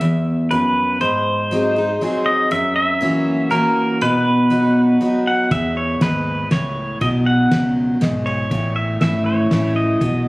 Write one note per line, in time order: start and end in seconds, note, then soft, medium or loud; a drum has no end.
0.00 0.49 E2 medium
0.00 0.53 E5 medium
0.51 0.99 F#2 medium
0.51 1.01 B4 medium
1.01 1.96 G#2 medium
1.01 2.30 C5 medium
1.51 1.75 F#3 medium
1.51 1.76 C4 medium
1.51 1.76 D#4 medium
1.51 1.75 G#4 medium
1.76 2.01 D#4 soft
1.76 2.00 G#4 soft
2.01 2.49 F#3 soft
2.01 2.49 C4 soft
2.01 2.50 D#4 soft
2.01 2.50 G#4 medium
2.26 2.51 D#5 medium
2.51 3.46 F#2 medium
2.51 2.75 E5 medium
2.76 3.53 E5 loud
3.01 3.48 E3 medium
3.01 3.49 A#3 soft
3.01 3.49 C#4 medium
3.01 3.49 F#4 medium
3.50 3.98 E3 soft
3.50 3.99 A#3 medium
3.50 3.99 C#4 medium
3.50 3.99 F#4 medium
3.50 4.03 A#4 medium
4.01 4.96 B2 medium
4.01 5.30 B4 medium
4.50 4.98 F#3 soft
4.50 4.99 B3 medium
4.50 4.99 D#4 medium
4.50 4.99 F#4 medium
5.01 5.48 F#3 medium
5.01 5.49 B3 medium
5.01 5.49 D#4 medium
5.01 5.49 F#4 medium
5.27 5.50 F#5 medium
5.51 5.96 E2 medium
5.51 6.01 E2 medium
5.51 5.77 E5 loud
5.51 kick medium
5.51 ride soft
5.77 6.02 C#5 medium
6.01 6.44 D#2 medium
6.01 6.49 G#2 medium
6.01 6.48 B4 medium
6.01 snare medium
6.01 ride medium
6.51 6.94 C#2 medium
6.51 6.99 A2 medium
6.51 6.98 C#5 medium
6.51 snare medium
6.51 ride medium
7.01 7.46 B1 medium
7.01 7.96 B2 medium
7.01 7.08 D#5 medium
7.01 kick medium
7.01 ride medium
7.26 7.73 F#5 medium
7.51 7.94 C#2 medium
7.51 7.99 F#2 medium
7.51 snare medium
7.51 ride medium
8.01 8.44 B1 medium
8.01 8.49 G#2 medium
8.01 snare medium
8.01 ride medium
8.26 8.75 C#5 medium
8.26 ride medium
8.51 8.95 A1 medium
8.51 9.46 A2 medium
8.51 kick medium
8.51 ride medium
8.76 9.00 E5 medium
9.01 9.44 G#1 medium
9.01 9.48 E3 medium
9.01 9.49 A3 medium
9.01 9.49 C#4 medium
9.01 9.49 E4 medium
9.01 9.25 E5 loud
9.01 snare medium
9.01 ride medium
9.26 9.76 C#5 medium
9.51 9.94 A1 medium
9.51 9.99 E3 medium
9.51 9.99 A3 medium
9.51 9.99 C#4 medium
9.51 10.00 E4 medium
9.51 snare medium
9.51 ride medium
9.76 10.28 D#5 medium
10.01 10.28 B1 medium
10.01 10.28 B2 medium
10.01 kick medium
10.01 ride soft